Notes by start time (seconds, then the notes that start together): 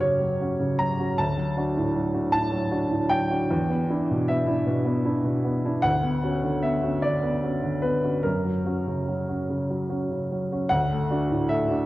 Already playing: F#2 F#3 C#4 F#4 G4 A#4
0.00 C#3 C#5
0.21 F#3
0.40 C#4 F#4
0.59 C#3
0.79 F#3 A#5
0.99 C#4 F#4
1.18 D2 A5
1.38 F#3
1.57 D4 F#4
1.77 A2
1.96 F#3
2.14 D4 F#4
2.32 A2 A5
2.52 F#3
2.71 D4 F#4
2.90 A2
3.09 F#3 G5
3.30 D4 F#4
3.50 E2
3.69 B3
3.90 D4 E4
4.11 B2
4.28 B3 E5
4.47 D4 E4
4.67 B2
4.85 B3
5.05 D4 E4
5.24 B2
5.44 B3
5.65 D4 E4
5.82 D2 F#5
6.03 B3
6.23 C#4 F#4
6.44 D3
6.63 B3 E5
6.83 C#4 F#4
7.02 D3 D5
7.23 B3
7.43 C#4 F#4
7.63 D3
7.82 B3 B4
8.04 C#4 F#4
8.23 F#2 A#4
8.45 F#3
8.65 C#4 F#4
8.87 C#3
9.08 F#3
9.28 C#4 F#4
9.49 C#3
9.70 F#3
9.90 C#4 F#4
10.11 C#3
10.32 F#3
10.52 C#4 F#4
10.70 D2 F#5
10.92 A3
11.10 D4 F#4
11.31 A2
11.49 A3 E5
11.69 D4 F#4